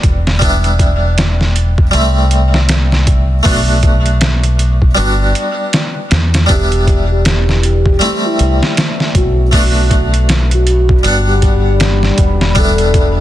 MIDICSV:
0, 0, Header, 1, 6, 480
1, 0, Start_track
1, 0, Key_signature, 1, "minor"
1, 0, Tempo, 759494
1, 264, Time_signature, 4, 2, 24, 8
1, 8345, End_track
2, 0, Start_track
2, 0, Title_t, "Ambient pad"
2, 0, Program_c, 0, 92
2, 4098, Note_on_c, 0, 74, 73
2, 4098, Note_on_c, 0, 79, 83
2, 4099, Note_on_c, 0, 64, 79
2, 4099, Note_on_c, 0, 71, 71
2, 5051, Note_off_c, 0, 74, 0
2, 5051, Note_off_c, 0, 79, 0
2, 5052, Note_off_c, 0, 64, 0
2, 5052, Note_off_c, 0, 71, 0
2, 5061, Note_on_c, 0, 55, 79
2, 5062, Note_on_c, 0, 81, 86
2, 5063, Note_on_c, 0, 72, 78
2, 5064, Note_on_c, 0, 76, 74
2, 6013, Note_off_c, 0, 55, 0
2, 6013, Note_off_c, 0, 81, 0
2, 6013, Note_on_c, 0, 83, 84
2, 6014, Note_off_c, 0, 72, 0
2, 6015, Note_off_c, 0, 76, 0
2, 6016, Note_on_c, 0, 69, 77
2, 6018, Note_on_c, 0, 74, 72
2, 6018, Note_on_c, 0, 78, 72
2, 6971, Note_off_c, 0, 69, 0
2, 6983, Note_on_c, 0, 55, 85
2, 7922, Note_off_c, 0, 78, 0
2, 7945, Note_on_c, 0, 76, 68
2, 8345, Note_off_c, 0, 55, 0
2, 8345, Note_off_c, 0, 74, 0
2, 8345, Note_off_c, 0, 76, 0
2, 8345, Note_off_c, 0, 83, 0
2, 8345, End_track
3, 0, Start_track
3, 0, Title_t, "Soft synth lead"
3, 0, Program_c, 1, 80
3, 4111, Note_on_c, 1, 67, 100
3, 4447, Note_off_c, 1, 67, 0
3, 4495, Note_on_c, 1, 67, 86
3, 4799, Note_off_c, 1, 67, 0
3, 4829, Note_on_c, 1, 67, 97
3, 5166, Note_off_c, 1, 67, 0
3, 5213, Note_on_c, 1, 64, 95
3, 5518, Note_off_c, 1, 64, 0
3, 5790, Note_on_c, 1, 66, 96
3, 6008, Note_off_c, 1, 66, 0
3, 6029, Note_on_c, 1, 66, 96
3, 6367, Note_off_c, 1, 66, 0
3, 6658, Note_on_c, 1, 66, 97
3, 7075, Note_off_c, 1, 66, 0
3, 7130, Note_on_c, 1, 67, 89
3, 7868, Note_off_c, 1, 67, 0
3, 7948, Note_on_c, 1, 69, 97
3, 8286, Note_off_c, 1, 69, 0
3, 8345, End_track
4, 0, Start_track
4, 0, Title_t, "Harpsichord"
4, 0, Program_c, 2, 6
4, 0, Note_on_c, 2, 55, 76
4, 0, Note_on_c, 2, 59, 66
4, 0, Note_on_c, 2, 62, 69
4, 0, Note_on_c, 2, 66, 86
4, 219, Note_off_c, 2, 55, 0
4, 224, Note_off_c, 2, 59, 0
4, 229, Note_off_c, 2, 62, 0
4, 234, Note_off_c, 2, 66, 0
4, 248, Note_on_c, 2, 55, 72
4, 259, Note_on_c, 2, 59, 74
4, 270, Note_on_c, 2, 62, 70
4, 279, Note_on_c, 2, 64, 84
4, 1177, Note_off_c, 2, 55, 0
4, 1183, Note_off_c, 2, 59, 0
4, 1188, Note_off_c, 2, 62, 0
4, 1193, Note_off_c, 2, 64, 0
4, 1208, Note_on_c, 2, 55, 76
4, 1222, Note_on_c, 2, 57, 70
4, 1230, Note_on_c, 2, 60, 71
4, 1240, Note_on_c, 2, 64, 81
4, 2137, Note_off_c, 2, 55, 0
4, 2144, Note_off_c, 2, 57, 0
4, 2148, Note_off_c, 2, 60, 0
4, 2153, Note_off_c, 2, 64, 0
4, 2168, Note_on_c, 2, 57, 74
4, 2176, Note_on_c, 2, 59, 71
4, 2184, Note_on_c, 2, 62, 64
4, 2196, Note_on_c, 2, 66, 85
4, 3097, Note_off_c, 2, 57, 0
4, 3101, Note_off_c, 2, 59, 0
4, 3105, Note_off_c, 2, 62, 0
4, 3111, Note_off_c, 2, 66, 0
4, 3126, Note_on_c, 2, 55, 76
4, 3137, Note_on_c, 2, 59, 66
4, 3144, Note_on_c, 2, 62, 71
4, 3158, Note_on_c, 2, 66, 80
4, 4056, Note_off_c, 2, 55, 0
4, 4062, Note_off_c, 2, 59, 0
4, 4065, Note_off_c, 2, 62, 0
4, 4072, Note_off_c, 2, 66, 0
4, 4084, Note_on_c, 2, 55, 74
4, 4098, Note_on_c, 2, 59, 70
4, 4106, Note_on_c, 2, 62, 72
4, 4115, Note_on_c, 2, 64, 88
4, 5015, Note_off_c, 2, 55, 0
4, 5022, Note_off_c, 2, 59, 0
4, 5026, Note_off_c, 2, 62, 0
4, 5031, Note_off_c, 2, 64, 0
4, 5051, Note_on_c, 2, 55, 74
4, 5062, Note_on_c, 2, 57, 67
4, 5071, Note_on_c, 2, 60, 70
4, 5083, Note_on_c, 2, 64, 84
4, 5979, Note_off_c, 2, 55, 0
4, 5984, Note_off_c, 2, 57, 0
4, 5988, Note_off_c, 2, 60, 0
4, 5995, Note_off_c, 2, 64, 0
4, 6013, Note_on_c, 2, 57, 73
4, 6020, Note_on_c, 2, 59, 74
4, 6031, Note_on_c, 2, 62, 71
4, 6041, Note_on_c, 2, 66, 82
4, 6940, Note_off_c, 2, 57, 0
4, 6943, Note_off_c, 2, 59, 0
4, 6949, Note_off_c, 2, 62, 0
4, 6954, Note_off_c, 2, 66, 0
4, 6973, Note_on_c, 2, 55, 78
4, 6982, Note_on_c, 2, 59, 68
4, 6994, Note_on_c, 2, 62, 66
4, 7002, Note_on_c, 2, 78, 88
4, 7900, Note_off_c, 2, 55, 0
4, 7904, Note_off_c, 2, 59, 0
4, 7910, Note_off_c, 2, 62, 0
4, 7914, Note_off_c, 2, 78, 0
4, 7932, Note_on_c, 2, 55, 77
4, 7943, Note_on_c, 2, 59, 67
4, 7952, Note_on_c, 2, 62, 69
4, 7963, Note_on_c, 2, 64, 90
4, 8345, Note_off_c, 2, 55, 0
4, 8345, Note_off_c, 2, 59, 0
4, 8345, Note_off_c, 2, 62, 0
4, 8345, Note_off_c, 2, 64, 0
4, 8345, End_track
5, 0, Start_track
5, 0, Title_t, "Fingered electric bass"
5, 0, Program_c, 3, 33
5, 21, Note_on_c, 3, 28, 74
5, 1204, Note_off_c, 3, 28, 0
5, 1225, Note_on_c, 3, 36, 72
5, 2166, Note_off_c, 3, 36, 0
5, 2181, Note_on_c, 3, 35, 96
5, 3124, Note_off_c, 3, 35, 0
5, 3145, Note_on_c, 3, 31, 89
5, 3361, Note_off_c, 3, 31, 0
5, 3865, Note_on_c, 3, 40, 88
5, 4081, Note_off_c, 3, 40, 0
5, 4102, Note_on_c, 3, 28, 97
5, 5045, Note_off_c, 3, 28, 0
5, 5308, Note_on_c, 3, 36, 83
5, 5431, Note_off_c, 3, 36, 0
5, 5782, Note_on_c, 3, 35, 91
5, 6965, Note_off_c, 3, 35, 0
5, 6982, Note_on_c, 3, 31, 87
5, 7645, Note_off_c, 3, 31, 0
5, 7698, Note_on_c, 3, 28, 73
5, 8345, Note_off_c, 3, 28, 0
5, 8345, End_track
6, 0, Start_track
6, 0, Title_t, "Drums"
6, 22, Note_on_c, 9, 36, 89
6, 22, Note_on_c, 9, 42, 65
6, 85, Note_off_c, 9, 36, 0
6, 85, Note_off_c, 9, 42, 0
6, 171, Note_on_c, 9, 38, 52
6, 234, Note_off_c, 9, 38, 0
6, 262, Note_on_c, 9, 36, 97
6, 265, Note_on_c, 9, 42, 82
6, 325, Note_off_c, 9, 36, 0
6, 328, Note_off_c, 9, 42, 0
6, 405, Note_on_c, 9, 42, 43
6, 469, Note_off_c, 9, 42, 0
6, 501, Note_on_c, 9, 36, 86
6, 502, Note_on_c, 9, 42, 66
6, 565, Note_off_c, 9, 36, 0
6, 565, Note_off_c, 9, 42, 0
6, 744, Note_on_c, 9, 42, 76
6, 748, Note_on_c, 9, 38, 104
6, 807, Note_off_c, 9, 42, 0
6, 811, Note_off_c, 9, 38, 0
6, 890, Note_on_c, 9, 38, 34
6, 953, Note_off_c, 9, 38, 0
6, 984, Note_on_c, 9, 42, 59
6, 1047, Note_off_c, 9, 42, 0
6, 1125, Note_on_c, 9, 36, 85
6, 1188, Note_off_c, 9, 36, 0
6, 1221, Note_on_c, 9, 42, 89
6, 1284, Note_off_c, 9, 42, 0
6, 1459, Note_on_c, 9, 42, 58
6, 1523, Note_off_c, 9, 42, 0
6, 1606, Note_on_c, 9, 38, 51
6, 1669, Note_off_c, 9, 38, 0
6, 1698, Note_on_c, 9, 42, 89
6, 1702, Note_on_c, 9, 38, 110
6, 1761, Note_off_c, 9, 42, 0
6, 1766, Note_off_c, 9, 38, 0
6, 1848, Note_on_c, 9, 38, 40
6, 1911, Note_off_c, 9, 38, 0
6, 1940, Note_on_c, 9, 42, 64
6, 1941, Note_on_c, 9, 36, 89
6, 2003, Note_off_c, 9, 42, 0
6, 2004, Note_off_c, 9, 36, 0
6, 2180, Note_on_c, 9, 46, 77
6, 2181, Note_on_c, 9, 36, 106
6, 2244, Note_off_c, 9, 36, 0
6, 2244, Note_off_c, 9, 46, 0
6, 2419, Note_on_c, 9, 42, 60
6, 2421, Note_on_c, 9, 36, 88
6, 2483, Note_off_c, 9, 42, 0
6, 2484, Note_off_c, 9, 36, 0
6, 2564, Note_on_c, 9, 42, 36
6, 2627, Note_off_c, 9, 42, 0
6, 2660, Note_on_c, 9, 42, 78
6, 2664, Note_on_c, 9, 38, 107
6, 2723, Note_off_c, 9, 42, 0
6, 2727, Note_off_c, 9, 38, 0
6, 2803, Note_on_c, 9, 42, 42
6, 2866, Note_off_c, 9, 42, 0
6, 2902, Note_on_c, 9, 42, 61
6, 2965, Note_off_c, 9, 42, 0
6, 3045, Note_on_c, 9, 36, 82
6, 3108, Note_off_c, 9, 36, 0
6, 3141, Note_on_c, 9, 42, 85
6, 3204, Note_off_c, 9, 42, 0
6, 3383, Note_on_c, 9, 42, 60
6, 3446, Note_off_c, 9, 42, 0
6, 3622, Note_on_c, 9, 42, 82
6, 3626, Note_on_c, 9, 38, 109
6, 3685, Note_off_c, 9, 42, 0
6, 3689, Note_off_c, 9, 38, 0
6, 3861, Note_on_c, 9, 42, 78
6, 3865, Note_on_c, 9, 38, 99
6, 3924, Note_off_c, 9, 42, 0
6, 3928, Note_off_c, 9, 38, 0
6, 4007, Note_on_c, 9, 42, 69
6, 4011, Note_on_c, 9, 38, 99
6, 4070, Note_off_c, 9, 42, 0
6, 4074, Note_off_c, 9, 38, 0
6, 4102, Note_on_c, 9, 36, 100
6, 4102, Note_on_c, 9, 42, 82
6, 4165, Note_off_c, 9, 36, 0
6, 4165, Note_off_c, 9, 42, 0
6, 4246, Note_on_c, 9, 42, 43
6, 4309, Note_off_c, 9, 42, 0
6, 4343, Note_on_c, 9, 36, 83
6, 4345, Note_on_c, 9, 42, 60
6, 4406, Note_off_c, 9, 36, 0
6, 4409, Note_off_c, 9, 42, 0
6, 4583, Note_on_c, 9, 42, 79
6, 4587, Note_on_c, 9, 38, 107
6, 4646, Note_off_c, 9, 42, 0
6, 4651, Note_off_c, 9, 38, 0
6, 4734, Note_on_c, 9, 38, 35
6, 4797, Note_off_c, 9, 38, 0
6, 4825, Note_on_c, 9, 42, 61
6, 4888, Note_off_c, 9, 42, 0
6, 4965, Note_on_c, 9, 36, 85
6, 5028, Note_off_c, 9, 36, 0
6, 5063, Note_on_c, 9, 42, 87
6, 5126, Note_off_c, 9, 42, 0
6, 5304, Note_on_c, 9, 42, 60
6, 5367, Note_off_c, 9, 42, 0
6, 5452, Note_on_c, 9, 38, 50
6, 5515, Note_off_c, 9, 38, 0
6, 5544, Note_on_c, 9, 42, 84
6, 5549, Note_on_c, 9, 38, 114
6, 5608, Note_off_c, 9, 42, 0
6, 5612, Note_off_c, 9, 38, 0
6, 5690, Note_on_c, 9, 38, 35
6, 5753, Note_off_c, 9, 38, 0
6, 5782, Note_on_c, 9, 36, 92
6, 5782, Note_on_c, 9, 42, 65
6, 5845, Note_off_c, 9, 36, 0
6, 5845, Note_off_c, 9, 42, 0
6, 6021, Note_on_c, 9, 36, 103
6, 6021, Note_on_c, 9, 46, 75
6, 6084, Note_off_c, 9, 46, 0
6, 6085, Note_off_c, 9, 36, 0
6, 6261, Note_on_c, 9, 36, 86
6, 6263, Note_on_c, 9, 42, 64
6, 6324, Note_off_c, 9, 36, 0
6, 6326, Note_off_c, 9, 42, 0
6, 6406, Note_on_c, 9, 42, 41
6, 6470, Note_off_c, 9, 42, 0
6, 6503, Note_on_c, 9, 42, 80
6, 6507, Note_on_c, 9, 38, 104
6, 6566, Note_off_c, 9, 42, 0
6, 6570, Note_off_c, 9, 38, 0
6, 6644, Note_on_c, 9, 42, 41
6, 6707, Note_off_c, 9, 42, 0
6, 6741, Note_on_c, 9, 42, 58
6, 6805, Note_off_c, 9, 42, 0
6, 6883, Note_on_c, 9, 36, 90
6, 6946, Note_off_c, 9, 36, 0
6, 6980, Note_on_c, 9, 42, 81
6, 7043, Note_off_c, 9, 42, 0
6, 7219, Note_on_c, 9, 42, 55
6, 7220, Note_on_c, 9, 36, 80
6, 7282, Note_off_c, 9, 42, 0
6, 7283, Note_off_c, 9, 36, 0
6, 7458, Note_on_c, 9, 42, 75
6, 7462, Note_on_c, 9, 38, 98
6, 7521, Note_off_c, 9, 42, 0
6, 7525, Note_off_c, 9, 38, 0
6, 7603, Note_on_c, 9, 38, 34
6, 7666, Note_off_c, 9, 38, 0
6, 7696, Note_on_c, 9, 42, 66
6, 7698, Note_on_c, 9, 36, 89
6, 7759, Note_off_c, 9, 42, 0
6, 7762, Note_off_c, 9, 36, 0
6, 7844, Note_on_c, 9, 38, 53
6, 7908, Note_off_c, 9, 38, 0
6, 7935, Note_on_c, 9, 42, 81
6, 7938, Note_on_c, 9, 36, 101
6, 7998, Note_off_c, 9, 42, 0
6, 8001, Note_off_c, 9, 36, 0
6, 8079, Note_on_c, 9, 42, 45
6, 8142, Note_off_c, 9, 42, 0
6, 8178, Note_on_c, 9, 42, 62
6, 8179, Note_on_c, 9, 36, 88
6, 8242, Note_off_c, 9, 36, 0
6, 8242, Note_off_c, 9, 42, 0
6, 8345, End_track
0, 0, End_of_file